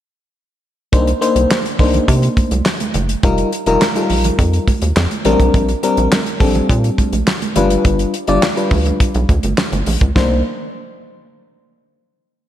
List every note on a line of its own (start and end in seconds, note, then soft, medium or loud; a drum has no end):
0.92 1.13 C2 loud
0.92 1.11 A#3 medium
0.92 1.11 D4 medium
0.92 1.11 D#4 medium
0.92 1.11 C5 medium
0.92 kick loud
0.92 closed hi-hat medium
1.07 closed hi-hat soft
1.07 muted conga soft
1.21 1.57 A#3 medium
1.21 1.57 D4 medium
1.21 1.57 D#4 medium
1.21 1.58 C5 loud
1.21 closed hi-hat medium
1.35 1.46 C2 medium
1.35 closed hi-hat soft
1.50 snare loud
1.50 clap loud
1.50 muted conga soft
1.50 high conga medium
1.66 closed hi-hat medium
1.79 2.00 C2 medium
1.79 2.51 A#3 medium
1.79 2.51 D4 medium
1.79 2.51 D#4 medium
1.79 2.51 C5 medium
1.79 kick loud
1.79 open hi-hat medium
1.79 low conga medium
1.94 closed hi-hat medium
1.94 high conga medium
1.94 low conga medium
2.08 2.29 C3 loud
2.08 kick loud
2.08 closed hi-hat loud
2.08 muted conga soft
2.22 closed hi-hat soft
2.22 muted conga soft
2.37 kick loud
2.37 closed hi-hat medium
2.37 high conga medium
2.51 2.62 C2 medium
2.51 closed hi-hat medium
2.51 high conga medium
2.66 snare loud
2.66 clap medium
2.66 muted conga soft
2.80 closed hi-hat medium
2.80 muted conga soft
2.80 high conga medium
2.94 3.15 F#1 medium
2.94 closed hi-hat medium
2.94 high conga medium
2.94 low conga medium
3.09 closed hi-hat medium
3.23 3.44 F1 loud
3.23 3.50 G3 medium
3.23 3.51 D#4 medium
3.23 3.51 F4 medium
3.23 3.51 A#4 medium
3.23 kick loud
3.23 closed hi-hat medium
3.23 muted conga soft
3.38 closed hi-hat soft
3.53 closed hi-hat medium
3.66 3.77 F1 medium
3.66 3.85 G3 medium
3.66 3.85 D#4 medium
3.66 3.85 F4 medium
3.66 3.85 A#4 loud
3.66 closed hi-hat soft
3.81 snare loud
3.81 clap loud
3.81 muted conga soft
3.81 high conga medium
3.95 4.67 G3 medium
3.95 4.68 D#4 medium
3.95 4.68 F4 medium
3.95 4.02 A4 medium
3.95 closed hi-hat medium
4.03 4.71 A#4 medium
4.10 4.31 A#1 medium
4.10 open hi-hat medium
4.10 low conga medium
4.24 closed hi-hat medium
4.24 high conga medium
4.24 low conga medium
4.38 4.59 F2 loud
4.38 kick loud
4.38 closed hi-hat loud
4.53 closed hi-hat soft
4.68 kick medium
4.68 closed hi-hat medium
4.68 high conga medium
4.82 4.92 D#2 medium
4.82 closed hi-hat soft
4.82 high conga medium
4.97 5.07 F2 loud
4.97 snare loud
4.97 clap medium
5.11 closed hi-hat soft
5.11 high conga medium
5.25 5.36 A#1 medium
5.25 5.71 G3 medium
5.25 5.72 C4 medium
5.25 5.72 D4 medium
5.25 5.72 A#4 loud
5.25 closed hi-hat medium
5.25 high conga medium
5.25 low conga medium
5.39 5.50 B1 medium
5.39 kick medium
5.39 closed hi-hat medium
5.54 5.75 A#1 medium
5.54 kick loud
5.54 closed hi-hat medium
5.54 muted conga soft
5.69 closed hi-hat soft
5.69 muted conga soft
5.83 6.19 G3 medium
5.83 6.19 C4 medium
5.83 6.19 D4 medium
5.83 6.19 A#4 medium
5.83 closed hi-hat medium
5.97 6.08 A#1 medium
5.97 closed hi-hat soft
6.12 snare loud
6.12 clap loud
6.12 high conga medium
6.26 closed hi-hat medium
6.40 6.61 A#1 medium
6.40 7.12 G3 medium
6.40 7.12 C4 medium
6.40 7.13 D4 medium
6.40 7.13 A4 medium
6.40 kick loud
6.40 open hi-hat medium
6.40 low conga medium
6.55 closed hi-hat medium
6.55 high conga medium
6.55 low conga medium
6.70 6.90 A#2 loud
6.70 kick loud
6.70 closed hi-hat medium
6.84 closed hi-hat soft
6.98 kick medium
6.98 closed hi-hat medium
6.98 high conga medium
7.12 7.23 A#1 medium
7.12 closed hi-hat medium
7.12 high conga medium
7.27 snare loud
7.27 clap medium
7.27 muted conga soft
7.42 closed hi-hat soft
7.42 high conga medium
7.56 7.77 G1 medium
7.56 8.14 G3 medium
7.56 8.14 D4 medium
7.56 8.14 F4 medium
7.56 8.14 B4 loud
7.56 closed hi-hat medium
7.56 high conga medium
7.56 low conga medium
7.70 closed hi-hat medium
7.85 8.06 G1 loud
7.85 kick loud
7.85 closed hi-hat medium
7.99 closed hi-hat medium
8.14 closed hi-hat medium
8.27 8.39 G1 loud
8.27 8.46 G3 medium
8.27 8.46 D4 medium
8.27 8.46 F4 medium
8.27 8.46 D5 loud
8.27 closed hi-hat soft
8.42 snare loud
8.42 clap medium
8.42 muted conga soft
8.42 high conga medium
8.56 9.29 G3 medium
8.56 9.29 D4 medium
8.56 9.29 F4 medium
8.56 9.29 B4 medium
8.56 closed hi-hat soft
8.56 muted conga soft
8.71 8.92 D2 medium
8.71 kick loud
8.71 open hi-hat medium
8.71 low conga medium
8.85 closed hi-hat soft
8.85 high conga medium
8.85 low conga medium
9.00 kick loud
9.00 closed hi-hat loud
9.00 muted conga soft
9.14 9.25 B1 loud
9.14 closed hi-hat soft
9.14 muted conga soft
9.29 9.39 D2 medium
9.29 kick medium
9.29 closed hi-hat medium
9.29 high conga medium
9.43 9.54 G1 medium
9.43 closed hi-hat medium
9.43 high conga medium
9.58 snare loud
9.58 clap medium
9.72 9.83 G1 medium
9.72 closed hi-hat medium
9.72 muted conga soft
9.72 high conga medium
9.86 9.97 A#1 medium
9.86 open hi-hat medium
9.86 high conga medium
9.86 low conga medium
10.01 10.12 C#2 medium
10.01 kick medium
10.01 closed hi-hat medium
10.16 10.43 C2 medium
10.16 10.43 A#3 medium
10.16 10.43 D4 medium
10.16 10.43 D#4 medium
10.16 10.43 C5 medium
10.16 kick loud
10.16 snare loud
10.16 high conga medium